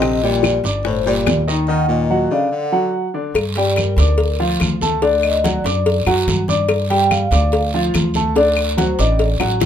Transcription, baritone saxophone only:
Already playing: C3
0.23 A#2
0.85 A2
1.06 A#2
1.68 D#3
1.89 A#2
2.30 C#3
2.52 D3

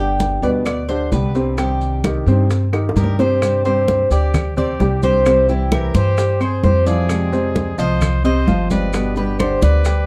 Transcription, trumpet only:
2.96 G4
3.19 G4
3.65 G4
4.11 G4
4.57 G4
5.03 G4
5.50 E4
5.73 G4
5.97 G4
6.42 G#4
6.65 G4
6.88 G#4
7.80 C5
8.25 C5
8.71 B4
9.18 G4
9.40 G4
9.64 B4

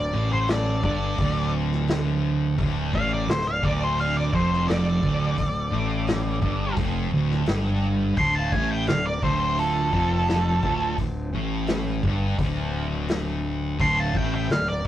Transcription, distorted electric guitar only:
0.13 A2
0.83 G2
1.19 D2
2.59 D2
2.94 A2
3.28 D2
3.62 D2
4.33 F2
5.02 D2
5.38 D2
5.72 A2
6.41 G2
6.77 F2
7.12 D2
7.48 G2
8.18 D2
8.53 A2
8.88 D2
9.23 D2
9.92 F2
10.62 D2
10.99 D2
11.34 A2
12.04 G2
12.39 D2
13.79 D2
14.15 A2
14.50 D2

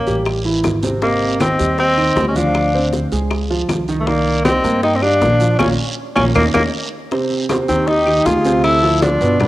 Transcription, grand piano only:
0.07 G3 G4
0.45 E3 E4
0.83 C3 C4
1.02 C3 C4
1.40 D#3 D#4
1.59 G3 G4
1.98 D#3 D#4
2.17 G3 G4
2.36 F3 F4
2.74 C4 C5
3.12 G#3 G#4
3.50 F3 F4
3.89 D#3 D#4
4.07 D#3 D#4
4.45 G3 G4
4.64 A#3 A#4
5.02 G3 G4
5.21 A#3 A#4
5.40 F3 F4
5.59 A#3 C#4 F4
6.16 A#3 C#4 F4
6.35 A#3 C#4 D#4
6.54 A#3 C#4 D#4
7.12 C3 C4 C5
7.50 C3 C4 C5
7.68 D#3 D#4 G4
8.07 D#3 D#4 G4
8.45 C3 C4 C5
8.83 F3 F4 A4
9.21 B2 B3 B4
9.40 B2 B3 B4

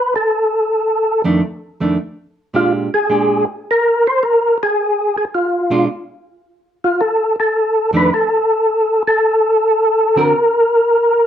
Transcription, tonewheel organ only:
Already playing: B4
0.16 A4
2.56 F4
2.94 G#4
3.71 A#4
4.07 C5
4.23 A#4
4.63 G#4
5.17 G#4
5.35 F4
6.84 F4
7.01 A4
7.40 A4
7.96 B4
8.14 A4
9.08 A4
10.19 A#4

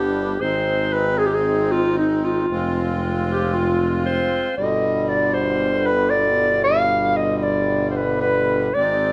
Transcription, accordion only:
Already playing: G3 B3 D4
0.41 G#3 C4 D#4
2.49 G#3 C4 F4
4.57 B2 D3 G3
8.75 G#3 C4 D#4

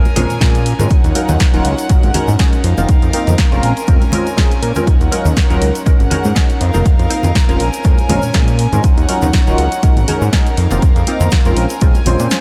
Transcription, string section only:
Already playing: C#4 A#4 G#5
0.90 D#4 C#5 F#5
1.89 C#4 A#4
2.64 D#4 F5
3.63 C#4 G#5
4.87 D#4 C#5 F#5
5.87 C#4 A#4 F#5
6.61 D#4 F5
7.60 C#4 G#5
8.84 D#4 C#5 F#5
9.83 C#4 A#4
10.57 D#4 F5
11.57 G#5

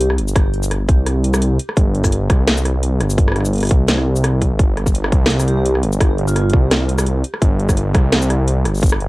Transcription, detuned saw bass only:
Already playing: C2
0.18 G1
0.54 G1
0.89 C2
1.77 G1
2.30 C2
3.01 G1
3.36 G1
3.71 C2
4.51 G1
4.59 G1
5.12 C2
5.83 G1
6.18 G1
6.53 C2
7.42 G1
7.95 C2
8.65 G1
9.01 G1

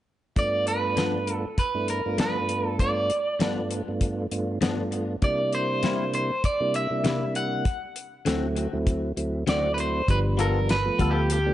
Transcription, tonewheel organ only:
0.36 G2 A3 B3 D4 F4
1.75 G2 A3 B3 D4 E4
2.06 G2 A3 B3 D4 F4
3.41 G2 A3 B3 D4 F4
3.88 G2 A3 B3 D4 F4
4.31 G2 A3 B3 D4 F4
4.61 G2 A3 B3 D4 F4
5.22 C3 G3 A#3 D4 E4
6.60 C3 G3 A#3 D4 E4
6.90 C3 G3 A#3 D4 E4
8.26 D2 F#3 A3 C4 E4
8.73 D2 F#3 A3 C4 E4
9.17 D2 F#3 A3 C4 E4
9.47 D2 F#3 A3 C4 E4
10.09 F3 G3 B3 D4
10.86 F3 A3 B3 F4
11.46 F3 A3 B3 D4

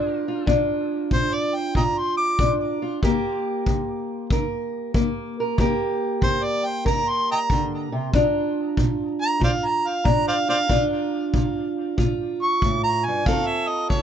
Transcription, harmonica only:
1.13 C5
1.34 D5
1.55 G5
1.76 D#5 G5 A#5
1.98 C6
2.17 D6
6.23 C5
6.44 D5
6.66 G5
6.86 A#5
7.09 C6
7.32 D#5 G5 A#5
9.21 A#5
9.44 C5 D5 F5
9.65 A#5
9.87 F5
10.07 A#5
10.28 C5 D5 F5
10.49 C5 D5 F5
12.42 C#6
12.84 A#5
13.05 G#5
13.27 F5
13.47 E5
13.67 D#5
13.89 C#5

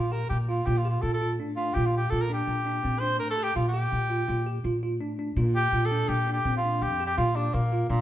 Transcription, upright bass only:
Already playing: A#2
0.30 A#2
0.67 A#2
1.03 A#2
1.40 A2
1.76 A#2
2.12 A#2
2.47 A#2
2.84 A#2
3.20 A2
3.56 A#2
3.92 A#2
4.28 A#2
4.64 A#2
5.00 A2
5.36 A#2
5.72 A#2
6.08 A#2
6.45 A#2
6.81 F2
7.17 A#2
7.54 A#2
7.89 A#2

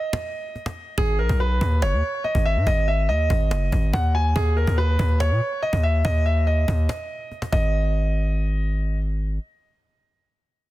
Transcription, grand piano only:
Already playing: D#5
0.98 G#4
1.19 A#4
1.40 B4
1.82 C#5
2.24 D#5
2.45 E5
2.67 D#5
2.88 E5
3.09 D#5
3.93 F#5
4.15 G#5
4.36 G#4
4.57 A#4
4.78 B4
5.20 C#5
5.62 D#5
5.83 E5
6.05 D#5
6.26 E5
6.47 D#5
7.52 D#5

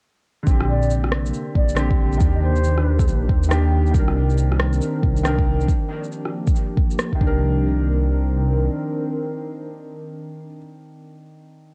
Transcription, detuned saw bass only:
0.47 A#1
1.55 A#1
2.21 D#2
3.08 A#1
3.29 D#2
3.95 C2
5.03 C2
7.21 C2

